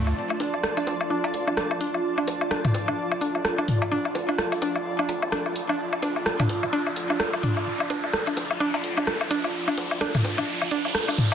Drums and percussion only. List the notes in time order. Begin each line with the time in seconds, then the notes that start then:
0.07 low woodblock, maracas
0.30 low woodblock
0.40 closed hi-hat, high bongo
0.54 low woodblock
0.63 cross-stick
0.77 closed hi-hat, low woodblock
0.87 closed hi-hat, high bongo
1.01 low woodblock
1.24 cowbell, low woodblock
1.34 closed hi-hat
1.48 low woodblock
1.57 cross-stick
1.71 low woodblock
1.81 closed hi-hat
1.94 low woodblock
2.18 low woodblock
2.28 closed hi-hat, high bongo
2.41 low woodblock
2.51 cross-stick, cowbell
2.65 closed hi-hat, mid tom, low woodblock
2.74 closed hi-hat, high bongo
2.88 low woodblock
3.12 low woodblock
3.21 closed hi-hat
3.35 low woodblock
3.45 cross-stick
3.58 low woodblock
3.68 closed hi-hat, mid tom
3.82 cowbell, low woodblock
4.05 low woodblock
4.15 closed hi-hat, high bongo
4.29 low woodblock
4.38 cross-stick
4.52 closed hi-hat, low woodblock
4.62 closed hi-hat, high bongo
4.76 low woodblock
4.99 low woodblock
5.09 closed hi-hat, cowbell
5.22 low woodblock
5.32 cross-stick
5.46 low woodblock
5.56 closed hi-hat
5.69 low woodblock
5.93 low woodblock
6.03 closed hi-hat, high bongo
6.16 low woodblock
6.26 cross-stick
6.40 closed hi-hat, mid tom, cowbell, low woodblock
6.49 closed hi-hat, high bongo
6.63 low woodblock
6.87 low woodblock
6.96 closed hi-hat
7.10 low woodblock
7.20 cross-stick
7.33 low woodblock
7.43 closed hi-hat, mid tom
7.57 low woodblock
7.80 low woodblock
7.90 closed hi-hat, high bongo
8.04 low woodblock
8.13 cross-stick
8.27 closed hi-hat, low woodblock
8.37 closed hi-hat, high bongo
8.51 low woodblock
8.74 cowbell, low woodblock
8.84 closed hi-hat
8.97 low woodblock
9.07 cross-stick
9.21 low woodblock
9.31 closed hi-hat
9.44 low woodblock
9.68 low woodblock
9.78 closed hi-hat, high bongo
9.91 low woodblock
10.01 cross-stick, cowbell
10.15 closed hi-hat, mid tom, low woodblock
10.24 closed hi-hat, high bongo
10.38 low woodblock
10.62 low woodblock
10.71 closed hi-hat
10.85 low woodblock
10.95 cross-stick
11.08 low woodblock
11.18 closed hi-hat, mid tom